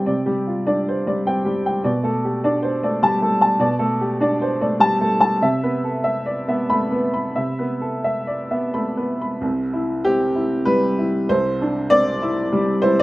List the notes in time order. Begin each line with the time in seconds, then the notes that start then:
Already playing: G3 G4 G5
0.06 C3 D5
0.26 G3 G4
0.47 F4
0.67 D4 D5
0.89 C5
1.07 G3 D5
1.27 C4 G5
1.45 G3 G4
1.66 G5
1.84 B2 D5
2.03 A3 A4
2.25 G4
2.44 D4 D5
2.63 C5
2.83 A3 D5
3.02 G3 A5
3.22 A3 A4
3.41 A5
3.59 B2 D5
3.79 A3 A4
4.01 G4
4.20 D4 D5
4.42 C5
4.61 A3 D5
4.80 G3 A5
5.01 A3 A4
5.21 A5
5.42 C3 E5
5.63 B3 B4
5.84 A4
6.04 E5
6.26 D5
6.48 B3 E5
6.70 A3 B5
6.91 B3 B4
7.14 B5
7.36 C3 E5
7.59 B3 B4
7.81 A4
8.04 E5
8.27 D5
8.51 B3 E5
8.74 A3 B5
8.97 B3 B4
9.22 B5
9.41 C2 C3
9.73 E4
10.04 C4 G4
10.36 E4
10.65 G3 B4
10.99 E4
11.29 C2 C3 C5
11.62 D4
11.90 C4 D5
12.22 E4
12.52 G3
12.82 E4 C5
13.00 D5